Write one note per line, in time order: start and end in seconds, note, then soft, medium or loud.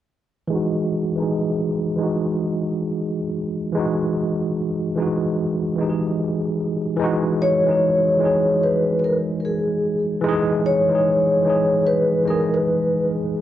0.48 0.95 E3 medium
0.48 0.96 G#3 loud
0.52 0.97 D#4 medium
0.52 0.99 F#4 loud
1.15 1.70 E3 medium
1.15 1.71 G#3 medium
1.20 1.72 D#4 medium
1.20 1.74 G#4 medium
1.96 3.16 E3 medium
1.96 3.17 G#3 medium
2.01 3.19 D#4 medium
2.01 3.20 F#4 medium
3.72 4.66 E3 medium
3.72 4.67 G#3 medium
3.77 4.68 D#4 medium
3.77 4.69 F#4 loud
4.95 5.61 E3 medium
4.95 5.63 G#3 medium
5.00 5.64 D#4 medium
5.00 5.65 F#4 medium
5.76 6.69 E3 medium
5.76 6.70 G#3 medium
5.81 6.71 D#4 medium
5.81 5.88 G4 medium
5.89 6.76 G#4 medium
6.97 7.44 E3 loud
6.97 7.45 G#3 loud
7.01 7.46 D#4 loud
7.01 7.47 F#4 loud
7.42 8.66 C#5 loud
7.64 8.08 E3 medium
7.64 8.10 G#3 medium
7.68 8.11 D#4 medium
7.68 8.12 G#4 medium
8.18 9.39 E3 medium
8.18 9.41 G#3 medium
8.23 9.42 D#4 medium
8.23 9.43 G#4 medium
8.63 8.95 B4 medium
8.99 9.03 B4 medium
9.04 9.20 A#4 medium
9.40 9.43 A#4 medium
9.45 10.06 G#4 medium
10.21 10.69 E3 loud
10.21 10.70 G#3 loud
10.26 10.71 D#4 loud
10.26 10.72 G#4 loud
10.66 11.90 C#5 loud
10.88 11.32 E3 medium
10.88 11.34 G#3 medium
10.92 11.35 D#4 medium
10.92 11.36 G#4 medium
11.42 12.09 E3 medium
11.42 12.11 G#3 medium
11.47 12.12 D#4 medium
11.47 12.13 G#4 medium
11.87 12.24 B4 medium
12.23 13.17 E3 medium
12.23 13.18 G#3 medium
12.28 13.19 D#4 medium
12.28 13.20 G#4 medium
12.28 12.54 A#4 medium
12.54 13.04 B4 medium